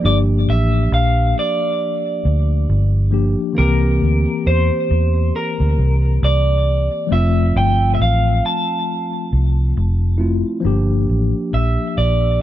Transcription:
0.00 tine electric piano F3 A#3 D4
0.04 fingered electric bass G1, tine electric piano G4, clean electric guitar D5
0.48 fingered electric bass A1, clean electric guitar E5
0.92 fingered electric bass A#1, clean electric guitar F5
1.39 clean electric guitar D5
2.25 fingered electric bass D2
2.69 fingered electric bass G1
3.11 tine electric piano F3 A#3 D4 G4
3.53 tine electric piano D#3 A#3 C4
3.58 fingered electric bass C2, tine electric piano E3 G4, clean electric guitar A#4
4.02 fingered electric bass D2
4.46 fingered electric bass E2, clean electric guitar C5
4.91 fingered electric bass E2
5.36 clean electric guitar A#4
5.60 fingered electric bass D2
5.78 fingered electric bass C2
6.23 fingered electric bass C2, clean electric guitar D5
7.07 tine electric piano F3 A3 C4
7.12 fingered electric bass F1, tine electric piano F4, clean electric guitar E5
7.56 fingered electric bass G1, clean electric guitar G5
7.95 clean electric guitar E5
8.00 fingered electric bass A1, clean electric guitar F5
8.46 clean electric guitar A5
9.33 fingered electric bass C2
9.77 fingered electric bass F1
10.18 tine electric piano A3 C4 E4 F4
10.60 tine electric piano F3 A#3
10.65 fingered electric bass G1, tine electric piano D4 G4
11.09 fingered electric bass A1
11.53 fingered electric bass A#1, clean electric guitar E5
11.98 fingered electric bass A#1, clean electric guitar D5

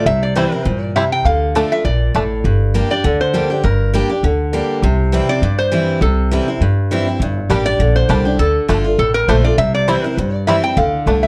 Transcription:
0.06 upright bass C2, steel-string acoustic guitar C3, resonator guitar played with a steel bar E5
0.23 resonator guitar played with a steel bar D5
0.36 steel-string acoustic guitar E3 G3 C4 E4, five-string banjo G3 C4 E4, resonator guitar played with a steel bar C5
0.52 steel-string acoustic guitar C4 E4, resonator guitar played with a steel bar A#4
0.65 upright bass G2, steel-string acoustic guitar A#2, resonator guitar played with a steel bar C5
0.82 resonator guitar played with a steel bar D5
0.96 steel-string acoustic guitar C3, five-string banjo G3 C4 E4, resonator guitar played with a steel bar E5
1.12 resonator guitar played with a steel bar G5
1.25 upright bass D2, steel-string acoustic guitar D3, resonator guitar played with a steel bar F5
1.55 steel-string acoustic guitar D3 A3 D4 F4, five-string banjo A3 D4
1.72 steel-string acoustic guitar D4 F4, resonator guitar played with a steel bar E5
1.85 upright bass A#1, steel-string acoustic guitar A#2, resonator guitar played with a steel bar D5
2.15 upright bass A1, steel-string acoustic guitar A2, five-string banjo A3 D4
2.44 upright bass G1, steel-string acoustic guitar G2
2.74 steel-string acoustic guitar G3 A#3 D4 G4
2.90 steel-string acoustic guitar D4 G4, resonator guitar played with a steel bar D5
3.04 upright bass D2, steel-string acoustic guitar D3
3.21 resonator guitar played with a steel bar C5
3.33 steel-string acoustic guitar G3 A#3 D4 G4
3.50 steel-string acoustic guitar D4 G4
3.63 upright bass G1, steel-string acoustic guitar G2, resonator guitar played with a steel bar A#4
3.93 steel-string acoustic guitar G3 A#3 D4 G4
4.09 steel-string acoustic guitar D4 G4
4.23 upright bass D2, steel-string acoustic guitar D3
4.53 steel-string acoustic guitar G3 A#3 D4 G4
4.83 upright bass C2, steel-string acoustic guitar C3
5.12 steel-string acoustic guitar E3 G3 C4 E4
5.29 steel-string acoustic guitar C4 E4, resonator guitar played with a steel bar D5
5.42 upright bass G2, steel-string acoustic guitar G2
5.59 resonator guitar played with a steel bar C5
5.72 steel-string acoustic guitar E3 G3 C4 E4
6.01 upright bass C2, steel-string acoustic guitar C3, resonator guitar played with a steel bar A4
6.31 steel-string acoustic guitar E3 G3 C4 E4
6.48 steel-string acoustic guitar C4 E4
6.60 upright bass G2, steel-string acoustic guitar G2
6.91 steel-string acoustic guitar E3 G3 C4 E4
7.07 steel-string acoustic guitar C4 E4
7.20 upright bass G1, steel-string acoustic guitar G2
7.50 upright bass A1, steel-string acoustic guitar G3 A#3 D4 G4, five-string banjo G3 D4
7.66 steel-string acoustic guitar D4 G4, resonator guitar played with a steel bar D5
7.79 upright bass A#1, steel-string acoustic guitar D3
7.96 resonator guitar played with a steel bar C5
8.09 upright bass C2, steel-string acoustic guitar G3 A#3 D4 G4, five-string banjo G3 D4
8.25 steel-string acoustic guitar D4 G4
8.39 upright bass D2, steel-string acoustic guitar D3, resonator guitar played with a steel bar A4
8.68 upright bass G1, steel-string acoustic guitar D3 A3 D4 F4, five-string banjo A3 D4
8.84 steel-string acoustic guitar D4 F4
8.98 upright bass A1, steel-string acoustic guitar A2, resonator guitar played with a steel bar A4
9.14 resonator guitar played with a steel bar A#4
9.28 upright bass A#1, steel-string acoustic guitar D3 A3 D4 F4, five-string banjo A3 D4, resonator guitar played with a steel bar C5
9.45 steel-string acoustic guitar D4 F4, resonator guitar played with a steel bar D5
9.58 upright bass C2, steel-string acoustic guitar C3, resonator guitar played with a steel bar E5
9.75 resonator guitar played with a steel bar D5
9.88 steel-string acoustic guitar E3 G3 C4 E4, five-string banjo G3 C4 E4, resonator guitar played with a steel bar C5
10.04 steel-string acoustic guitar C4 E4, resonator guitar played with a steel bar A#4
10.17 upright bass G2, steel-string acoustic guitar G2, resonator guitar played with a steel bar C5
10.34 resonator guitar played with a steel bar D5
10.47 steel-string acoustic guitar E3 G3 C4 E4, five-string banjo G3 C4 E4, resonator guitar played with a steel bar E5
10.63 steel-string acoustic guitar C4 E4, resonator guitar played with a steel bar G5
10.77 upright bass D2, steel-string acoustic guitar D3, resonator guitar played with a steel bar F5
11.06 upright bass C2, steel-string acoustic guitar D3 A3 D4 F4, five-string banjo A3 D4
11.23 resonator guitar played with a steel bar E5

